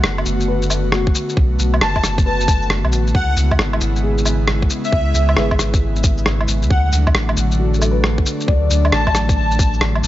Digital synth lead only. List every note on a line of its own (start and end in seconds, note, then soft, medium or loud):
1.81 2.05 A5 medium
2.26 2.63 A5 medium
3.15 3.24 F#5 medium
3.29 3.34 F#5 medium
4.85 5.46 E5 loud
6.71 6.80 F#5 medium
6.85 6.90 F#5 medium
8.92 9.16 A5 loud
9.36 9.73 A5 medium